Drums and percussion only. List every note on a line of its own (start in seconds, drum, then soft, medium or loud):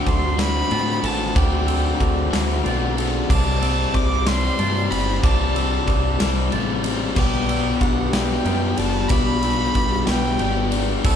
0.06 kick medium
0.06 ride medium
0.39 snare loud
0.39 ride loud
0.71 ride medium
1.04 ride medium
1.36 kick loud
1.36 ride medium
1.68 ride medium
2.00 kick medium
2.00 ride medium
2.33 snare loud
2.33 ride loud
2.66 ride medium
2.98 ride medium
3.30 kick loud
3.30 crash loud
3.62 ride medium
3.94 kick medium
3.94 ride medium
4.27 snare loud
4.27 ride loud
4.59 ride medium
4.92 ride medium
5.24 kick loud
5.24 ride loud
5.56 ride medium
5.88 kick medium
5.88 ride medium
6.20 snare loud
6.20 ride loud
6.52 ride medium
6.84 ride medium
7.16 kick loud
7.16 crash loud
7.49 ride medium
7.81 kick medium
7.81 ride medium
8.13 snare loud
8.13 ride loud
8.45 ride medium
8.77 ride medium
9.09 kick loud
9.09 ride loud
9.43 ride medium
9.75 kick medium
9.75 ride medium
10.07 snare loud
10.07 ride loud
10.39 ride medium
10.72 ride medium
11.04 kick loud
11.04 crash loud